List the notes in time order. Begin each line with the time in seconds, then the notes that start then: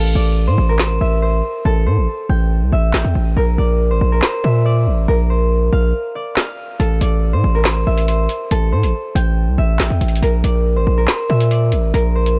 Already playing: A1 A4 C5 D5 F5
0.15 A1 D5
0.47 A2 C5
0.58 A1
0.69 A#4
0.79 C5, snare, clap
1.01 A1 E5
1.22 C5
1.65 A1 A4
1.86 A2 C5
1.97 A1
2.29 A1 G5
2.62 C2
2.72 A1 E5
2.93 A1 G5, snare, clap
3.04 E2
3.15 A1
3.37 A#1 A#4
3.58 A#1 D5
3.90 A1 C5
4.01 A#1
4.12 A#4
4.22 C5, snare, clap
4.44 A#2 E5
4.65 D5
4.87 A1
5.08 A#1 A#4
5.30 C5
5.73 A#1 F5
6.15 D5
6.36 F5, snare, clap
6.79 A1 A4, closed hi-hat
7.01 A1 D5, closed hi-hat
7.33 A2 C5
7.44 A1
7.55 A#4
7.65 C5, snare, clap, closed hi-hat
7.87 A1 E5
7.98 closed hi-hat
8.08 C5, closed hi-hat
8.29 closed hi-hat
8.51 A1 A4, closed hi-hat
8.72 A2 C5
8.83 A1, closed hi-hat
9.15 A1 G5, closed hi-hat
9.47 C2
9.58 A1 E5
9.79 A1 G5, snare, clap, closed hi-hat
9.90 E2
10.01 A1, closed hi-hat
10.08 closed hi-hat
10.16 closed hi-hat
10.22 A#1 A#4, closed hi-hat
10.44 A#1 D5, closed hi-hat
10.76 A1 C5
10.87 A#1
10.98 A#4
11.07 C5, snare, clap, closed hi-hat
11.30 A#2 E5
11.40 closed hi-hat
11.51 D5, closed hi-hat
11.72 A1, closed hi-hat
11.94 A#1 A#4, closed hi-hat
12.15 C5
12.26 closed hi-hat